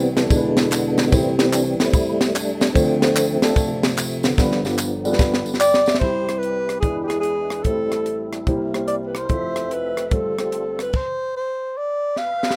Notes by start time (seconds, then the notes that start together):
Already playing: C2 C3 E3 G3 B3 C4
0.17 G3 A3 B3 C4 E4 A4, snare, ride bell, tambourine
0.30 E2 B2 D3 E3 G#3 B3 D4 E4 A4, kick, ride bell, tambourine
0.37 B4
0.57 snare, ride bell, tambourine
0.71 D3 G#3 B3, clap, ride bell, tambourine
0.97 snare, ride bell, tambourine
1.09 C2 C3 E3 G3 A3 C4 E4, kick, ride bell, tambourine
1.13 C3 G4 C5
1.39 A3 C4 E4 G4 C5, snare, ride bell, tambourine
1.53 D4, clap, ride bell, tambourine
1.79 G3 A3 C4 E4 G4 B4, snare, ride bell, tambourine
1.86 C5
1.93 kick, ride bell, tambourine
2.21 snare, ride bell, tambourine
2.34 G3 A3 D4, clap, ride bell, tambourine
2.61 snare, ride bell, tambourine
2.73 D2 D3 F3 A3 C4 D4 F4 C5, kick, ride bell, tambourine
3.02 A3 C4 D4 F4 C5, snare, ride bell, tambourine
3.16 clap, ride bell, tambourine
3.42 A3 C4 D4 F4 A4, snare, ride bell, tambourine
3.56 C3 F3 A3, kick, ride bell, tambourine
3.83 snare, ride bell, tambourine
3.97 clap, ride bell, tambourine
4.23 D3 F3 B3, snare, ride bell, tambourine
4.38 G1 G2 G3 B3 D4 F4 B4, kick, snare, tambourine
4.52 snare
4.64 G2 F3 G3 B3 D4 F4 D5, snare, tambourine
4.78 clap, tambourine
5.05 G3 B3 D4 F4 A4, tambourine
5.11 B4, snare
5.19 G2 F3 B3, kick, snare, tambourine
5.34 snare
5.46 tambourine
5.54 snare
5.60 D5 G5, clap, tambourine
5.74 snare
5.86 E5, snare, tambourine
5.95 snare
5.99 C2 C3 G3 C4 E4 A4 C5 B5, kick, crash
6.06 G4
6.29 cross-stick, closed hi-hat
6.38 B4
6.43 closed hi-hat
6.69 cross-stick, closed hi-hat
6.81 E2 E3 G#3 B3 D4 E4 G#4 B4, kick, closed hi-hat
6.85 D4 E4
7.03 G4 G#4
7.09 G#3 D4 E4 D5, cross-stick, closed hi-hat
7.20 G#4, closed hi-hat
7.50 cross-stick, closed hi-hat
7.63 A1 A2 G3 A3 C4 E4 G4 A4 C5, kick, closed hi-hat
7.92 cross-stick, closed hi-hat
8.06 closed hi-hat
8.33 cross-stick, closed hi-hat
8.45 C2 C3 G3 A#3 C4 D4 E4 G4 A#4 C5, kick, closed hi-hat
8.51 E4
8.73 A#3 E4 G4 C5, cross-stick, closed hi-hat
8.88 D5, closed hi-hat
9.07 B4
9.15 C5, cross-stick, closed hi-hat
9.28 F1 F2 F3 A3 C4 E4 F4 A4 C5 E5, kick, closed hi-hat
9.56 cross-stick, closed hi-hat
9.71 B4, closed hi-hat
9.97 cross-stick, closed hi-hat
10.08 G1 G2 G3 A3 C4 F4 G4 A4 B4, kick, closed hi-hat
10.12 A4 C5
10.39 A3 F4 G4 C5, cross-stick, closed hi-hat
10.52 closed hi-hat
10.79 B4, cross-stick, closed hi-hat
10.93 C5, kick, crash
11.37 C5
11.77 D5
12.16 B4 E5 F5, snare
12.43 snare
12.51 snare